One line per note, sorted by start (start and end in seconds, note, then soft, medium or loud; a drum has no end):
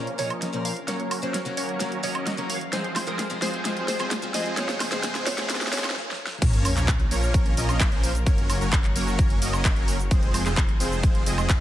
0.00 0.16 A#1 medium
0.00 0.16 F3 loud
0.00 0.16 A#3 medium
0.00 0.16 C#4 medium
0.00 0.86 C#4 medium
0.00 0.86 F4 medium
0.00 0.16 A#4 medium
0.00 2.69 A#4 medium
0.00 0.16 C#5 loud
0.00 0.18 C#5 loud
0.00 riser medium
0.07 closed hi-hat soft
0.18 0.51 A#1 medium
0.18 0.29 A#2 medium
0.18 0.29 F3 medium
0.18 0.51 F3 loud
0.18 0.29 A#3 medium
0.18 0.51 A#3 medium
0.18 0.51 C#4 medium
0.18 0.29 C#4 medium
0.18 0.29 G#4 medium
0.18 0.51 A#4 medium
0.18 0.66 C#5 loud
0.18 0.51 D#5 loud
0.18 open hi-hat loud
0.30 closed hi-hat soft
0.30 high woodblock medium
0.42 snare medium
0.42 closed hi-hat medium
0.53 0.86 A#1 loud
0.53 0.70 A#2 medium
0.53 0.70 F3 medium
0.53 0.73 F3 medium
0.53 0.70 A#3 medium
0.53 0.73 A#3 medium
0.53 0.73 C#4 medium
0.53 0.70 C#4 medium
0.53 0.73 A#4 medium
0.53 0.70 A#4 medium
0.53 0.73 C5 medium
0.53 closed hi-hat soft
0.65 0.89 F5 loud
0.65 open hi-hat loud
0.77 closed hi-hat soft
0.87 1.20 F#1 medium
0.87 0.98 F#3 medium
0.87 1.20 F#3 medium
0.87 2.71 F#3 medium
0.87 0.98 A#3 medium
0.87 1.20 A#3 medium
0.87 1.20 C#4 medium
0.87 2.71 C#4 medium
0.87 0.99 C#4 medium
0.87 2.71 F#4 medium
0.87 1.20 A#4 medium
0.87 0.99 A#4 medium
0.87 1.20 C#5 medium
0.87 1.24 C#5 loud
0.87 snare medium
0.87 closed hi-hat medium
1.00 closed hi-hat soft
1.11 open hi-hat loud
1.11 high woodblock medium
1.22 1.55 F#1 loud
1.22 1.39 F#3 medium
1.22 1.35 F#3 loud
1.22 1.35 A#3 medium
1.22 1.39 A#3 medium
1.22 1.35 C#4 medium
1.22 1.39 C#4 medium
1.22 1.35 A#4 medium
1.22 1.40 A#4 medium
1.22 1.55 C5 loud
1.22 1.35 C#5 loud
1.22 closed hi-hat soft
1.34 snare medium
1.34 closed hi-hat medium
1.45 1.77 F#3 medium
1.45 1.77 A#3 medium
1.45 1.78 C#4 medium
1.45 1.78 A#4 medium
1.45 closed hi-hat soft
1.57 2.01 F#1 loud
1.57 2.01 F#3 loud
1.57 2.01 A#3 medium
1.57 2.01 C#4 medium
1.57 2.01 A#4 medium
1.57 2.00 C#5 loud
1.57 2.01 C#5 loud
1.57 open hi-hat loud
1.69 closed hi-hat soft
1.80 1.90 F#3 medium
1.80 1.91 A#3 medium
1.80 1.91 C#4 medium
1.80 1.91 A#4 medium
1.80 snare medium
1.80 closed hi-hat medium
1.92 closed hi-hat soft
2.03 2.36 F#1 loud
2.03 2.14 F#3 medium
2.03 2.35 F#3 loud
2.03 2.14 A#3 medium
2.03 2.35 A#3 medium
2.03 2.35 C#4 medium
2.03 2.14 C#4 medium
2.03 2.14 G#4 medium
2.03 2.35 A#4 medium
2.03 2.46 C#5 loud
2.03 2.35 D#5 loud
2.03 open hi-hat loud
2.15 closed hi-hat soft
2.15 high woodblock medium
2.27 snare medium
2.27 closed hi-hat medium
2.37 2.70 F#1 loud
2.37 2.54 F#3 medium
2.37 2.58 F#3 medium
2.37 2.58 A#3 medium
2.37 2.55 A#3 medium
2.37 2.58 C#4 medium
2.37 2.55 C#4 medium
2.37 2.58 A#4 medium
2.37 2.55 A#4 medium
2.37 2.58 C#5 medium
2.37 closed hi-hat soft
2.50 2.60 F5 loud
2.50 open hi-hat loud
2.61 closed hi-hat soft
2.72 3.05 F1 loud
2.72 2.83 F3 medium
2.72 3.05 F3 medium
2.72 4.55 F3 medium
2.72 3.04 G#3 medium
2.72 2.83 G#3 medium
2.72 3.05 C4 medium
2.72 2.83 C4 medium
2.72 5.93 F4 medium
2.72 3.05 G#4 medium
2.72 4.55 G#4 medium
2.72 2.83 G#4 medium
2.72 3.05 C5 medium
2.72 4.55 C5 medium
2.72 3.05 C5 loud
2.72 snare medium
2.72 closed hi-hat medium
2.84 closed hi-hat soft
2.96 snare medium
2.96 open hi-hat loud
2.96 high woodblock medium
3.07 3.40 F1 loud
3.07 3.24 F3 medium
3.07 3.20 F3 medium
3.07 3.24 G#3 medium
3.07 3.20 G#3 medium
3.07 3.20 C4 medium
3.07 3.24 C4 medium
3.07 3.20 G#4 medium
3.07 3.24 G#4 medium
3.07 3.43 A#4 medium
3.07 3.20 C5 loud
3.07 closed hi-hat soft
3.19 snare medium
3.19 closed hi-hat medium
3.30 3.62 F3 medium
3.30 3.62 G#3 medium
3.30 3.62 C4 medium
3.30 3.62 G#4 medium
3.30 closed hi-hat soft
3.42 3.63 F1 loud
3.42 3.63 F3 medium
3.42 3.63 G#3 medium
3.42 3.63 C4 medium
3.42 3.63 G#4 medium
3.42 3.63 C5 loud
3.42 3.87 C5 loud
3.42 snare medium
3.42 open hi-hat loud
3.54 closed hi-hat soft
3.64 3.97 F1 loud
3.64 3.75 F3 medium
3.64 3.97 F3 medium
3.64 3.75 G#3 medium
3.64 3.97 G#3 medium
3.64 3.97 C4 medium
3.64 3.76 C4 medium
3.64 3.97 G#4 medium
3.64 3.76 G#4 medium
3.64 3.97 C5 medium
3.64 snare medium
3.64 closed hi-hat medium
3.77 closed hi-hat soft
3.88 4.36 C5 loud
3.88 snare medium
3.88 open hi-hat loud
3.99 4.32 F1 loud
3.99 4.16 F3 medium
3.99 4.12 F3 medium
3.99 4.16 G#3 medium
3.99 4.12 G#3 medium
3.99 4.12 C4 medium
3.99 4.16 C4 medium
3.99 4.12 G#4 medium
3.99 4.17 G#4 medium
3.99 4.12 C5 loud
3.99 closed hi-hat soft
3.99 high woodblock medium
4.11 snare medium
4.11 closed hi-hat medium
4.22 4.54 F3 medium
4.22 4.54 G#3 medium
4.22 4.55 C4 medium
4.22 4.55 G#4 loud
4.22 closed hi-hat soft
4.34 4.55 F3 medium
4.34 4.55 G#3 medium
4.34 4.55 C4 medium
4.34 4.55 G#4 medium
4.34 4.55 C5 loud
4.34 4.56 D#5 loud
4.34 snare medium
4.34 open hi-hat loud
4.46 closed hi-hat soft
4.57 4.90 C#2 loud
4.57 5.94 C#3 medium
4.57 4.67 F3 medium
4.57 4.89 F3 medium
4.57 4.89 G#3 medium
4.57 4.68 G#3 medium
4.57 4.89 C4 medium
4.57 4.68 C4 medium
4.57 4.89 G#4 medium
4.57 5.94 G#4 medium
4.57 4.68 G#4 medium
4.57 4.89 C5 medium
4.57 4.93 C#5 loud
4.57 snare medium
4.57 closed hi-hat medium
4.69 snare medium
4.69 closed hi-hat soft
4.80 snare medium
4.80 open hi-hat loud
4.80 high woodblock medium
4.91 5.01 C#2 loud
4.91 5.01 F3 medium
4.91 5.02 F3 loud
4.91 5.02 G#3 medium
4.91 5.02 C4 medium
4.91 5.02 G#4 medium
4.91 5.02 C5 loud
4.91 5.24 C5 medium
4.91 snare medium
4.91 closed hi-hat soft
5.03 5.36 C#2 loud
5.03 5.14 F3 medium
5.03 5.35 F3 medium
5.03 5.35 G#3 medium
5.03 5.14 G#3 medium
5.03 5.35 C4 medium
5.03 5.14 C4 medium
5.03 5.35 G#4 medium
5.03 5.14 G#4 medium
5.03 5.35 C5 loud
5.03 snare loud
5.03 closed hi-hat medium
5.15 snare medium
5.15 closed hi-hat soft
5.26 5.71 C#5 loud
5.26 snare loud
5.26 open hi-hat loud
5.37 5.47 C#2 loud
5.37 5.47 F3 medium
5.37 5.48 F3 loud
5.37 5.48 G#3 medium
5.37 5.48 C4 medium
5.37 5.48 G#4 medium
5.37 5.48 G#4 loud
5.37 5.48 C5 loud
5.37 snare medium
5.37 closed hi-hat soft
5.49 5.70 C#2 loud
5.49 5.60 F3 medium
5.49 5.71 F3 medium
5.49 5.71 G#3 medium
5.49 5.60 G#3 medium
5.49 5.71 C4 medium
5.49 5.60 C4 medium
5.49 5.71 G#4 medium
5.49 5.60 G#4 medium
5.49 5.71 C5 loud
5.49 snare loud
5.49 closed hi-hat medium
5.55 snare medium
5.61 snare medium
5.61 closed hi-hat soft
5.67 snare medium
5.72 5.93 C#2 loud
5.72 5.83 F3 medium
5.72 5.94 F3 medium
5.72 5.83 G#3 medium
5.72 5.94 G#3 medium
5.72 5.94 C4 medium
5.72 5.83 C4 medium
5.72 5.94 G#4 medium
5.72 5.83 G#4 medium
5.72 5.94 C5 loud
5.72 5.94 C#5 loud
5.72 snare loud
5.72 open hi-hat loud
5.78 snare medium
5.84 snare medium
5.84 high woodblock medium
5.90 snare medium
5.96 snare medium
6.11 snare medium
6.27 snare loud
6.42 6.74 A#1 loud
6.42 6.74 F3 medium
6.42 6.74 A#3 medium
6.42 6.74 C#4 medium
6.42 8.25 C#4 medium
6.42 8.25 F4 medium
6.42 6.74 A#4 medium
6.42 10.07 A#4 medium
6.42 6.74 C#5 medium
6.42 kick loud
6.42 closed hi-hat loud
6.42 crash loud
6.42 sub drop medium
6.42 cabasa soft
6.53 closed hi-hat soft
6.65 open hi-hat loud
6.65 cabasa medium
6.65 high woodblock medium
6.76 7.09 A#1 loud
6.76 6.89 F3 loud
6.76 6.89 A#3 medium
6.76 6.89 C#4 medium
6.76 6.89 A#4 medium
6.76 6.89 C#5 loud
6.76 clap soft
6.76 closed hi-hat soft
6.76 cabasa soft
6.88 kick loud
6.88 clap loud
6.88 closed hi-hat loud
6.88 cabasa soft
7.00 closed hi-hat soft
7.11 7.55 A#1 loud
7.11 7.54 F3 loud
7.11 7.54 A#3 medium
7.11 7.54 C#4 medium
7.11 7.54 A#4 medium
7.11 7.54 C#5 loud
7.11 open hi-hat loud
7.11 cabasa medium
7.23 closed hi-hat soft
7.23 cabasa soft
7.34 kick loud
7.34 closed hi-hat loud
7.34 cabasa soft
7.46 closed hi-hat soft
7.57 7.90 A#1 loud
7.57 7.89 F3 loud
7.57 7.89 A#3 medium
7.57 7.89 C#4 medium
7.57 7.89 A#4 medium
7.57 7.89 D#5 loud
7.57 open hi-hat loud
7.57 cabasa medium
7.69 closed hi-hat soft
7.69 cabasa soft
7.69 high woodblock medium
7.80 kick loud
7.80 clap loud
7.80 closed hi-hat loud
7.80 cabasa soft
7.92 8.24 A#1 loud
7.92 8.12 F3 medium
7.92 8.12 A#3 medium
7.92 8.12 C#4 medium
7.92 8.12 A#4 medium
7.92 8.12 C5 medium
7.92 closed hi-hat soft
8.03 open hi-hat loud
8.03 cabasa medium
8.15 closed hi-hat soft
8.15 cabasa soft
8.26 8.59 F#1 medium
8.26 8.58 F#3 medium
8.26 10.09 F#3 medium
8.26 8.58 A#3 medium
8.26 8.58 C#4 medium
8.26 10.09 F#4 medium
8.26 8.58 A#4 medium
8.26 8.58 C#5 medium
8.26 10.09 C#5 medium
8.26 kick loud
8.26 closed hi-hat loud
8.26 cabasa soft
8.38 closed hi-hat soft
8.50 open hi-hat loud
8.50 cabasa medium
8.50 high woodblock medium
8.61 8.93 F#1 loud
8.61 8.74 F#3 loud
8.61 8.74 A#3 medium
8.61 8.74 C#4 medium
8.61 8.74 A#4 medium
8.61 8.74 C#5 loud
8.61 closed hi-hat soft
8.61 cabasa soft
8.73 kick loud
8.73 clap loud
8.73 closed hi-hat medium
8.73 cabasa soft
8.84 clap soft
8.84 closed hi-hat soft
8.96 9.40 F#1 loud
8.96 9.39 F#3 loud
8.96 9.39 A#3 medium
8.96 9.39 C#4 medium
8.96 9.39 A#4 medium
8.96 9.39 C#5 loud
8.96 open hi-hat loud
8.96 cabasa medium
9.07 closed hi-hat soft
9.07 cabasa soft
9.19 kick loud
9.19 closed hi-hat medium
9.19 cabasa soft
9.30 closed hi-hat soft
9.42 9.74 F#1 loud
9.42 9.74 F#3 loud
9.42 9.74 A#3 medium
9.42 9.74 C#4 medium
9.42 9.74 A#4 medium
9.42 9.74 D#5 loud
9.42 open hi-hat loud
9.42 cabasa medium
9.53 cabasa soft
9.53 high woodblock medium
9.65 kick loud
9.65 clap loud
9.65 closed hi-hat medium
9.65 cabasa soft
9.76 10.09 F#1 loud
9.76 9.97 F#3 medium
9.76 9.97 A#3 medium
9.76 9.97 C#4 medium
9.76 9.97 A#4 medium
9.76 9.97 C#5 medium
9.76 closed hi-hat soft
9.88 open hi-hat loud
9.88 cabasa medium
10.00 closed hi-hat soft
10.00 cabasa soft
10.11 10.43 F1 loud
10.11 11.60 F3 medium
10.11 10.43 F3 medium
10.11 10.43 G#3 medium
10.11 10.43 C4 medium
10.11 11.60 F4 medium
10.11 10.43 G#4 medium
10.11 11.60 G#4 medium
10.11 11.60 C5 medium
10.11 10.43 C5 medium
10.11 kick loud
10.11 closed hi-hat medium
10.11 cabasa soft
10.23 closed hi-hat soft
10.34 open hi-hat loud
10.34 cabasa medium
10.34 high woodblock medium
10.46 10.78 F1 loud
10.46 10.58 F3 loud
10.46 10.58 G#3 medium
10.46 10.58 C4 medium
10.46 10.58 G#4 medium
10.46 10.58 C5 loud
10.46 clap soft
10.46 closed hi-hat soft
10.46 cabasa soft
10.57 kick loud
10.57 clap loud
10.57 closed hi-hat medium
10.57 cabasa soft
10.69 closed hi-hat soft
10.80 11.24 F1 loud
10.80 11.24 F3 loud
10.80 11.24 G#3 medium
10.80 11.24 C4 medium
10.80 11.24 G#4 medium
10.80 11.24 C5 loud
10.80 open hi-hat loud
10.80 cabasa medium
10.92 closed hi-hat soft
10.92 cabasa soft
11.03 kick loud
11.03 closed hi-hat medium
11.03 cabasa soft
11.15 closed hi-hat soft
11.26 11.59 F1 medium
11.26 11.58 F3 loud
11.26 11.58 G#3 medium
11.26 11.58 C4 medium
11.26 11.58 G#4 medium
11.26 11.58 D#5 loud
11.26 open hi-hat loud
11.26 cabasa medium
11.38 closed hi-hat soft
11.38 cabasa soft
11.38 high woodblock medium
11.49 kick loud
11.49 clap loud
11.49 closed hi-hat medium
11.49 cabasa soft